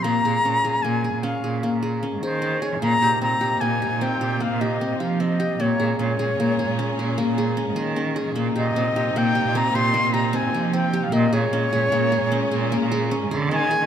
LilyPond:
<<
  \new Staff \with { instrumentName = "Flute" } { \time 7/4 \key bes \dorian \tempo 4 = 152 bes''2 aes''4 f''4~ f''16 r4 r16 c''4 des''8 | bes''4 bes''4 aes''4 g''4 f''8 ees''4 f''8 ees''4 | des''4 des''2. r2. | r8 ees''4. g''4 bes''8 c'''4 bes''8 aes''4 g''8. f''16 |
ees''8 des''1 r4. aes''4 | }
  \new Staff \with { instrumentName = "Qanun" } { \time 7/4 \key bes \dorian bes8 aes'8 des'8 aes'8 bes8 aes'8 des'8 aes'8 bes8 aes'8 des'8 aes'8 des'8 aes'8 | bes8 g'8 c'8 g'8 bes8 g'8 c'8 g'8 bes8 g'8 c'8 g'8 c'8 g'8 | bes8 aes'8 des'8 aes'8 bes8 aes'8 des'8 aes'8 bes8 aes'8 des'8 aes'8 des'8 aes'8 | bes8 g'8 c'8 g'8 bes8 g'8 c'8 g'8 bes8 g'8 c'8 g'8 c'8 g'8 |
bes8 aes'8 des'8 aes'8 bes8 aes'8 des'8 aes'8 bes8 aes'8 des'8 aes'8 des'8 aes'8 | }
  \new Staff \with { instrumentName = "String section" } { \time 7/4 \key bes \dorian r1. r4 | <c bes ees'>1.~ <c bes ees'>4 | <bes, aes des'>1.~ <bes, aes des'>4 | <c bes ees'>1.~ <c bes ees'>4 |
<bes, aes des'>1.~ <bes, aes des'>4 | }
  \new Staff \with { instrumentName = "Cello" } { \clef bass \time 7/4 \key bes \dorian bes,8 bes,8 bes,8 bes,16 r16 bes,8 r16 bes,8. bes,8. bes,4 aes,16 ees4~ ees16 ees16 | bes,8 bes,8 bes,8 bes,16 r16 bes,8 r16 bes,8. bes,8. bes,4 bes,16 f4~ f16 f16 | bes,8 bes,8 bes,8 bes,16 r16 bes,8 r16 bes,8. bes,8. bes,4 aes,16 ees4~ ees16 ees16 | bes,8 bes,8 bes,8 bes,16 r16 bes,8 r16 bes,8. bes,8. bes,4 bes,16 f4~ f16 f16 |
bes,8 bes,8 bes,8 bes,16 r16 bes,8 r16 bes,8. bes,8. bes,4 aes,16 ees4~ ees16 ees16 | }
>>